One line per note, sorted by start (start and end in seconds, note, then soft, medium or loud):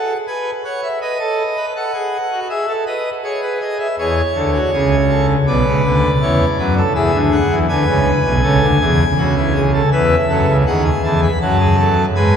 0.00 0.13 A4 medium
0.00 0.17 F#5 medium
0.27 0.50 B4 medium
0.27 0.50 G#5 medium
0.64 0.87 C#5 medium
0.64 0.80 F#5 medium
0.83 0.99 E5 medium
1.01 1.17 B4 medium
1.01 1.66 D#5 medium
1.19 1.43 A4 medium
1.57 1.73 B4 medium
1.76 1.92 A4 medium
1.76 2.40 F#5 medium
1.94 2.17 G#4 medium
2.32 2.48 F#4 medium
2.49 2.65 G#4 medium
2.49 2.72 E5 medium
2.68 2.84 A4 medium
2.86 3.09 B4 medium
2.86 3.09 D#5 medium
3.23 3.87 G#4 medium
3.23 3.40 C#5 medium
3.42 3.58 B4 soft
3.61 3.77 D#5 medium
3.79 3.96 E5 medium
3.98 4.21 E2 loud
3.98 4.21 E3 medium
3.98 4.21 G#4 medium
3.98 5.26 C#5 medium
4.35 4.58 D2 medium
4.35 4.58 D3 medium
4.35 4.51 A4 medium
4.54 4.70 F#4 medium
4.73 5.36 C#2 medium
4.73 5.36 C#3 medium
4.73 4.96 G#4 medium
5.10 5.33 A4 medium
5.47 5.63 B1 medium
5.47 5.63 B2 medium
5.47 6.11 B4 medium
5.47 6.74 D5 medium
5.66 5.81 C#2 medium
5.66 5.81 C#3 medium
5.84 6.07 D2 medium
5.84 6.07 D3 medium
6.21 6.44 E2 medium
6.21 6.44 E3 medium
6.21 6.44 C#5 medium
6.58 6.81 F#2 medium
6.58 6.81 F#3 medium
6.58 6.74 B4 medium
6.77 6.93 A4 medium
6.95 7.11 E2 medium
6.95 7.11 E3 loud
6.95 7.58 G#4 medium
6.95 7.18 E5 medium
7.13 7.36 D2 medium
7.13 7.36 D3 medium
7.32 7.55 F#5 medium
7.51 7.66 E2 medium
7.51 7.66 E3 medium
7.68 7.85 D2 medium
7.68 7.85 D3 medium
7.68 8.33 B4 medium
7.68 9.61 G#5 medium
7.87 8.11 C#2 medium
7.87 8.10 C#3 medium
8.25 8.41 B1 medium
8.25 8.41 B2 medium
8.43 8.59 C#2 medium
8.43 8.59 C#3 medium
8.43 8.66 A4 medium
8.62 8.78 D2 medium
8.62 8.78 D3 medium
8.80 9.03 E2 medium
8.80 9.04 E3 medium
8.80 9.03 G#4 medium
9.18 9.82 C#2 medium
9.18 9.82 C#3 medium
9.18 9.34 F#4 medium
9.37 9.52 E4 medium
9.55 9.71 G#4 medium
9.73 9.89 A4 medium
9.92 10.15 E2 medium
9.92 10.15 E3 medium
9.92 10.15 B4 loud
9.92 10.56 E5 medium
10.29 10.45 F#2 medium
10.29 10.46 F#3 medium
10.29 10.52 A4 medium
10.48 10.64 C#2 medium
10.48 10.64 C#3 medium
10.66 10.90 D#2 medium
10.66 10.90 D#3 medium
10.66 11.31 G#4 medium
10.66 10.83 F#5 medium
10.85 11.01 G#5 medium
11.04 11.27 E2 medium
11.04 11.27 E3 medium
11.04 11.20 A5 medium
11.23 11.39 B5 medium
11.41 12.06 F#2 medium
11.41 12.06 F#3 medium
11.41 11.57 F#4 medium
11.41 12.05 A5 medium
11.60 11.76 G#4 medium
11.79 12.02 A4 medium
12.15 12.37 G#2 medium
12.15 12.37 G#3 medium
12.15 12.37 B4 medium
12.15 12.37 G#5 medium